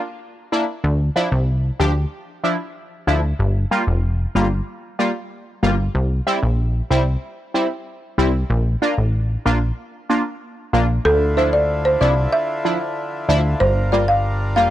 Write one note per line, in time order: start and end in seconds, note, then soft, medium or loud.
0.52 0.65 A#3 medium
0.52 0.65 D4 medium
0.52 0.65 E4 medium
0.84 1.10 D2 loud
1.16 1.29 F3 medium
1.16 1.29 D4 medium
1.16 1.29 E4 medium
1.32 1.71 C2 loud
1.79 2.06 D2 medium
1.79 1.92 F3 medium
1.79 1.92 D4 medium
1.79 1.92 G4 loud
2.44 2.56 F3 medium
2.44 2.56 D4 medium
2.44 2.56 E4 medium
3.07 3.34 D2 medium
3.07 3.20 F3 medium
3.07 3.20 D4 medium
3.07 3.20 E4 medium
3.39 3.66 G1 loud
3.71 3.84 G3 medium
3.71 3.84 A#3 medium
3.71 3.84 F4 medium
3.87 4.26 F1 loud
4.35 4.61 G1 loud
4.35 4.48 G3 medium
4.35 4.48 A#3 medium
4.35 4.48 F4 loud
4.99 5.12 G3 medium
4.99 5.12 A#3 medium
4.99 5.12 F4 medium
5.63 5.89 G1 medium
5.63 5.75 G3 medium
5.63 5.76 A#3 medium
5.63 5.75 F4 loud
5.95 6.21 C2 loud
6.27 6.39 G3 medium
6.27 6.39 C4 medium
6.27 6.39 E4 loud
6.43 6.82 A#1 medium
6.90 7.17 C2 medium
6.90 7.03 G3 medium
6.90 7.03 C4 medium
6.90 7.03 E4 medium
7.54 7.67 G3 medium
7.54 7.67 C4 medium
7.54 7.67 E4 medium
8.18 8.44 C2 loud
8.18 8.31 G3 medium
8.18 8.31 C4 medium
8.18 8.31 E4 medium
8.50 8.76 A#1 loud
8.82 8.95 A#3 medium
8.82 8.95 D4 medium
8.82 8.95 F4 medium
8.98 9.37 A1 medium
9.46 9.72 A#1 loud
9.46 9.58 A#3 medium
9.46 9.58 D4 medium
9.46 9.58 F4 medium
10.10 10.22 A#3 medium
10.10 10.22 D4 medium
10.10 10.22 F4 medium
10.73 10.99 A#1 medium
10.73 10.86 A#3 medium
10.73 10.86 D4 medium
10.73 10.86 F4 medium
11.05 11.97 D2 loud
11.05 13.58 D3 medium
11.05 14.70 D4 medium
11.05 13.58 E4 medium
11.05 14.70 F4 medium
11.05 11.19 A4 medium
11.37 11.50 F3 medium
11.37 11.50 D4 medium
11.37 11.50 E4 medium
11.37 11.51 C5 medium
11.53 11.67 D5 medium
11.85 11.99 C5 medium
12.01 12.27 C2 medium
12.01 12.14 F3 medium
12.01 12.14 D4 medium
12.01 12.14 E4 medium
12.01 12.15 D5 medium
12.33 12.78 E5 loud
12.65 12.78 F3 medium
12.65 12.78 D4 medium
12.65 12.78 E4 medium
13.29 13.55 D2 loud
13.29 13.41 F3 medium
13.29 13.41 D4 medium
13.29 13.41 E4 loud
13.60 14.58 G1 loud
13.60 14.70 G3 medium
13.60 14.70 A#4 medium
13.60 13.74 C5 medium
13.92 14.05 G3 medium
13.92 14.05 A#3 medium
13.92 14.05 F4 medium
13.92 14.06 D5 medium
14.08 14.22 F5 medium
14.56 14.70 F1 loud
14.56 14.69 G3 medium
14.56 14.69 A#3 medium
14.56 14.69 F4 medium
14.56 14.70 F5 medium